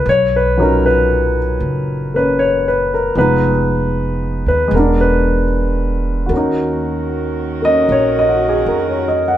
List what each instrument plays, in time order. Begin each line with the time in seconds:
0.06 upright bass B1, grand piano C#5
0.36 grand piano B4
0.57 grand piano A#2 F#3 C#4 D#4
0.63 grand piano A#4
0.86 grand piano B4
1.60 upright bass F#1
2.14 grand piano A#3 C#4 B4
2.39 grand piano C#5
2.68 grand piano B4
2.94 grand piano A#4
3.15 upright bass F1, grand piano F3 G#3 B3 B4
3.20 grand piano D#4
4.46 upright bass D#2, grand piano B4
4.68 upright bass E1, grand piano G#3
4.75 grand piano B3 A#4
4.79 grand piano D4
5.01 grand piano B4
6.26 upright bass D#2, grand piano A#3 F#4
6.31 saxophone section D#3 C#4 F#4 A#4, grand piano C#4
6.37 grand piano D#4
7.62 grand piano A#3 C#4 D#5
7.89 upright bass A#1, grand piano C#5
8.19 grand piano D#5
8.29 grand piano F#4
8.49 grand piano G#4
8.66 upright bass F2, grand piano A#4
8.89 grand piano C#5
9.08 grand piano D#5
9.28 grand piano F#5